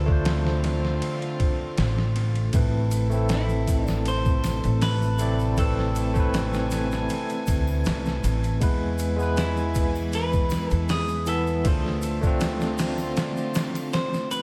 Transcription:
0.00 0.99 D2 loud
0.00 2.51 D3 medium
0.00 0.06 A3 medium
0.00 5.54 A3 medium
0.00 2.51 C4 medium
0.00 0.08 D4 medium
0.00 0.10 F4 medium
0.00 2.51 F4 medium
0.00 2.12 A4 medium
0.00 0.12 C5 medium
0.06 2.49 A3 medium
0.06 2.49 D4 medium
0.06 2.50 F4 medium
0.06 kick medium
0.12 2.52 C5 loud
0.25 snare loud
0.25 ride medium
0.47 snare medium
0.64 snare soft
0.64 ride medium
0.85 snare soft
1.02 ride medium
1.22 ride soft
1.40 kick loud
1.40 ride medium
1.78 2.50 A1 medium
1.78 snare loud
1.78 ride medium
1.99 snare soft
2.16 ride medium
2.36 ride soft
2.53 4.60 A1 medium
2.53 8.58 C3 medium
2.53 3.07 A3 medium
2.53 3.07 C4 medium
2.53 3.08 E4 medium
2.53 8.58 A4 medium
2.53 3.08 B4 medium
2.53 kick loud
2.53 ride medium
2.53 shaker medium
2.91 ride medium
2.91 shaker loud
3.10 5.14 A3 medium
3.10 5.15 C4 medium
3.10 shaker soft
3.14 5.16 E4 medium
3.14 5.17 A4 medium
3.29 snare loud
3.29 ride medium
3.29 shaker medium
3.33 3.85 E4 medium
3.49 shaker soft
3.68 kick medium
3.68 ride medium
3.68 shaker medium
3.85 4.03 D4 medium
3.85 snare medium
3.85 triangle medium
3.85 shaker soft
4.05 4.79 C5 loud
4.05 ride medium
4.05 shaker medium
4.25 kick loud
4.25 shaker soft
4.44 snare medium
4.44 ride medium
4.44 triangle medium
4.44 shaker medium
4.64 7.06 A1 medium
4.64 ride soft
4.64 shaker soft
4.81 5.58 B4 loud
4.81 snare loud
4.81 open hi-hat medium
4.81 shaker medium
5.02 shaker soft
5.19 5.52 A3 loud
5.19 5.52 C4 medium
5.19 5.53 E4 medium
5.19 5.53 D5 loud
5.19 ride medium
5.19 shaker medium
5.39 shaker soft
5.57 6.11 A3 medium
5.57 6.11 C4 medium
5.57 6.12 E4 medium
5.57 8.20 A4 medium
5.57 6.12 B4 medium
5.57 8.59 G#5 medium
5.57 kick loud
5.57 ride medium
5.57 shaker medium
5.79 snare soft
5.96 ride medium
5.96 shaker medium
6.14 8.56 A3 loud
6.14 8.57 C4 medium
6.14 kick medium
6.14 shaker soft
6.18 8.58 E4 medium
6.18 8.59 B4 loud
6.34 snare loud
6.34 ride medium
6.34 shaker soft
6.53 snare medium
6.53 shaker soft
6.71 snare soft
6.71 ride medium
6.71 shaker medium
6.92 snare soft
6.92 shaker soft
7.09 ride medium
7.09 shaker soft
7.29 ride soft
7.29 shaker soft
7.47 7.81 D2 medium
7.47 kick loud
7.47 ride medium
7.47 triangle medium
7.47 shaker medium
7.67 triangle medium
7.67 shaker soft
7.84 8.20 C2 medium
7.84 snare loud
7.84 ride medium
7.84 shaker soft
8.05 snare soft
8.05 shaker soft
8.24 8.57 A1 loud
8.24 ride medium
8.24 shaker medium
8.44 ride soft
8.44 shaker soft
8.60 10.68 E2 medium
8.60 11.62 E3 medium
8.60 9.14 G#3 medium
8.60 9.14 B3 medium
8.60 11.62 E4 medium
8.60 9.15 E4 medium
8.60 11.62 B4 medium
8.60 9.16 B4 medium
8.60 11.63 G#5 medium
8.60 kick loud
8.60 ride medium
8.60 shaker soft
8.98 ride medium
8.98 shaker medium
9.16 11.21 G#3 medium
9.16 11.23 B3 medium
9.16 shaker soft
9.21 11.24 E4 medium
9.21 11.25 B4 loud
9.37 10.10 E4 medium
9.37 snare loud
9.37 ride medium
9.37 shaker medium
9.57 shaker soft
9.75 kick loud
9.75 ride medium
9.75 shaker medium
9.95 triangle medium
9.95 shaker soft
10.13 10.72 B4 loud
10.13 ride medium
10.13 shaker medium
10.33 kick medium
10.33 shaker soft
10.50 snare medium
10.50 ride medium
10.50 triangle medium
10.50 shaker medium
10.70 11.65 E2 loud
10.70 10.90 A4 loud
10.70 ride soft
10.70 shaker soft
10.89 11.27 G#4 loud
10.89 snare loud
10.89 open hi-hat medium
10.89 shaker medium
11.08 shaker soft
11.26 11.59 E3 loud
11.26 11.60 B3 medium
11.26 11.60 E4 loud
11.26 13.89 A4 loud
11.26 11.61 E5 loud
11.26 ride medium
11.26 shaker medium
11.47 shaker soft
11.64 13.14 D2 medium
11.64 14.42 D3 medium
11.64 12.18 A3 medium
11.64 14.42 A3 medium
11.64 14.42 C4 medium
11.64 12.18 D4 medium
11.64 14.42 F4 loud
11.64 12.19 F4 medium
11.64 12.19 C5 medium
11.64 kick loud
11.64 ride medium
11.64 shaker soft
11.86 snare soft
12.02 ride medium
12.02 shaker medium
12.21 14.42 A3 loud
12.21 14.42 D4 medium
12.21 14.42 F4 medium
12.21 kick medium
12.21 shaker soft
12.27 14.42 C4 loud
12.40 snare loud
12.40 ride medium
12.40 shaker medium
12.61 snare medium
12.61 shaker soft
12.78 snare loud
12.78 open hi-hat medium
12.78 shaker medium
12.98 triangle medium
12.98 shaker soft
13.16 snare loud
13.16 ride medium
13.16 shaker medium
13.37 shaker soft
13.54 snare loud
13.54 ride medium
13.54 triangle medium
13.54 shaker medium
13.75 ride medium
13.75 triangle medium
13.75 shaker soft
13.93 14.31 C5 loud
13.93 snare loud
13.93 ride medium
13.93 shaker soft
14.14 snare soft
14.14 shaker soft
14.31 14.41 B4 loud
14.31 ride medium
14.31 shaker medium

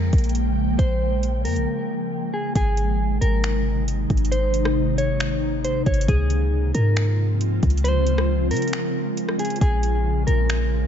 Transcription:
0.00 0.11 F2 loud
0.00 2.52 C#3 medium
0.00 2.52 F3 medium
0.00 2.51 G#3 medium
0.00 2.51 A#3 medium
0.00 0.31 A#4 medium
0.00 2.52 G5 medium
0.13 0.76 A#1 loud
0.13 kick loud
0.13 closed hi-hat medium
0.18 closed hi-hat medium
0.24 closed hi-hat medium
0.29 closed hi-hat medium
0.35 closed hi-hat medium
0.79 1.47 A#1 loud
0.79 1.41 C5 loud
0.79 kick loud
0.79 closed hi-hat medium
1.23 closed hi-hat medium
1.45 1.58 F2 medium
1.45 2.29 A#4 medium
1.45 closed hi-hat medium
1.45 open hi-hat medium
1.56 1.67 A#1 loud
1.56 closed hi-hat soft
2.34 2.54 G#4 medium
2.55 3.19 G#1 loud
2.55 6.05 C3 medium
2.55 6.05 D#3 medium
2.55 4.30 G#3 medium
2.55 6.05 D#4 medium
2.55 3.18 G#4 loud
2.55 kick loud
2.55 closed hi-hat medium
2.77 closed hi-hat medium
3.21 4.06 G#1 loud
3.21 3.84 A#4 medium
3.21 closed hi-hat medium
3.44 finger snap loud
3.44 closed hi-hat medium
3.88 closed hi-hat medium
4.10 5.82 G#1 loud
4.10 kick medium
4.10 closed hi-hat soft
4.17 closed hi-hat medium
4.25 closed hi-hat medium
4.32 6.07 A#3 medium
4.32 4.94 C5 medium
4.32 closed hi-hat medium
4.54 closed hi-hat medium
4.65 cross-stick loud
4.98 5.60 C#5 medium
4.98 closed hi-hat medium
5.20 finger snap loud
5.20 closed hi-hat medium
5.64 5.85 C5 medium
5.64 closed hi-hat medium
5.86 6.08 G#1 loud
5.86 6.07 C#5 medium
5.86 kick medium
5.86 closed hi-hat soft
5.94 closed hi-hat medium
6.01 closed hi-hat medium
6.08 6.72 C#2 loud
6.08 10.87 C#3 medium
6.08 9.58 F3 medium
6.08 10.87 G#3 medium
6.08 9.58 C4 medium
6.08 9.58 F4 medium
6.08 6.71 G#4 loud
6.08 kick loud
6.08 closed hi-hat medium
6.30 closed hi-hat medium
6.74 7.59 G#2 loud
6.74 7.37 A#4 medium
6.74 closed hi-hat medium
6.96 finger snap loud
6.96 closed hi-hat medium
7.41 closed hi-hat medium
7.63 8.53 C#2 loud
7.63 kick medium
7.63 closed hi-hat soft
7.70 closed hi-hat medium
7.77 closed hi-hat medium
7.84 8.47 C5 loud
7.84 closed hi-hat medium
8.07 closed hi-hat medium
8.18 cross-stick loud
8.51 8.73 C#3 loud
8.51 9.35 A#4 medium
8.51 closed hi-hat medium
8.51 open hi-hat medium
8.57 closed hi-hat medium
8.62 closed hi-hat medium
8.68 closed hi-hat soft
8.73 finger snap loud
8.73 closed hi-hat medium
9.17 closed hi-hat medium
9.29 cross-stick medium
9.39 9.60 G#4 medium
9.39 closed hi-hat medium
9.45 closed hi-hat medium
9.50 closed hi-hat medium
9.56 closed hi-hat soft
9.61 10.25 A#1 loud
9.61 10.87 F3 medium
9.61 10.87 A#3 medium
9.61 10.87 F4 medium
9.61 10.24 G#4 loud
9.61 kick loud
9.61 closed hi-hat medium
9.83 closed hi-hat medium
10.27 10.87 A#1 loud
10.27 10.87 A#4 medium
10.27 closed hi-hat medium
10.49 finger snap loud
10.49 closed hi-hat medium

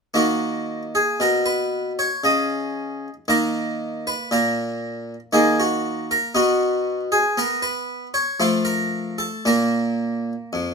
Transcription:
0.14 0.99 D#3 soft
0.14 3.25 A#3 soft
0.14 0.82 F#4 medium
0.95 1.20 G#4 medium
1.20 2.04 B2 soft
1.20 1.47 A#4 medium
1.46 1.91 B4 medium
1.99 2.25 C#5 medium
2.24 3.07 C#3 soft
2.24 3.13 D#5 medium
3.28 4.12 D#3 soft
3.28 5.31 A#3 soft
3.28 4.07 A#4 medium
4.07 4.33 B4 medium
4.31 5.14 A#2 soft
4.31 5.19 A#4 medium
5.33 6.15 D#3 soft
5.33 6.31 A#3 soft
5.33 5.60 G#4 medium
5.60 6.11 F#4 medium
6.11 6.36 A#4 medium
6.35 7.16 B2 medium
6.35 7.36 B3 soft
6.35 7.00 F#4 medium
7.12 7.37 G#4 medium
7.38 8.20 B3 soft
7.38 7.63 A#4 medium
7.62 8.06 B4 medium
8.14 8.40 C#5 medium
8.40 9.25 F3 soft
8.40 9.42 A3 soft
8.40 8.66 C5 medium
8.65 9.19 A#4 medium
9.18 9.46 A4 medium
9.45 10.32 A#2 soft
9.45 10.74 A#3 soft
9.45 10.74 A#4 medium
10.53 10.74 F2 soft

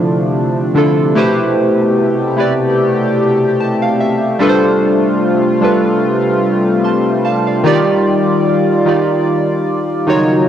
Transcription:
0.00 4.36 C3 medium
0.00 0.32 D3 medium
0.00 1.12 F3 medium
0.00 7.60 A3 medium
0.00 0.32 D4 medium
0.00 1.12 D4 medium
0.00 0.32 E4 medium
0.00 0.33 F4 medium
0.00 0.33 C5 medium
0.74 1.05 D3 medium
0.74 1.06 D4 medium
0.74 1.06 E4 medium
0.74 1.07 F4 medium
0.74 1.07 A4 medium
1.15 4.37 B2 medium
1.15 2.05 A3 loud
1.15 2.05 E4 medium
1.15 4.37 G4 medium
1.15 2.06 G4 loud
1.15 2.06 B4 medium
1.15 2.07 C5 loud
2.37 3.56 A3 medium
2.37 3.56 E4 medium
2.37 3.57 G4 medium
2.37 3.57 B4 medium
2.37 3.58 D5 medium
3.60 3.80 A5 medium
3.82 3.99 F5 medium
4.00 4.38 E5 medium
4.39 7.62 C3 medium
4.39 5.29 G3 loud
4.39 10.04 G3 medium
4.39 5.30 D4 loud
4.39 7.61 F4 medium
4.39 5.30 F4 medium
4.39 5.31 A4 loud
4.39 4.49 B4 medium
4.49 5.34 C5 loud
5.61 6.80 G3 medium
5.61 6.81 D4 medium
5.61 6.81 F4 medium
5.61 6.81 A4 medium
5.61 6.82 B4 medium
6.84 7.23 A5 soft
6.84 7.22 C6 medium
7.25 7.46 F5 medium
7.25 7.45 A5 medium
7.47 7.66 D5 medium
7.47 7.85 F5 medium
7.64 8.54 D#3 loud
7.64 10.05 D#3 medium
7.64 8.54 D#4 medium
7.64 10.05 F4 medium
7.64 8.54 F4 medium
7.64 8.55 G4 loud
7.64 10.05 D5 medium
7.64 8.55 D5 loud
8.85 10.05 D#3 medium
8.85 10.05 D#4 medium
8.85 10.05 F4 medium
8.85 10.06 G4 medium
8.85 10.06 D5 medium
10.07 10.49 C#3 medium
10.07 10.49 D#3 medium
10.07 10.49 F#3 medium
10.07 10.49 A#3 medium
10.07 10.49 D#4 medium
10.07 10.49 F4 medium
10.07 10.49 F#4 medium
10.07 10.49 C#5 medium

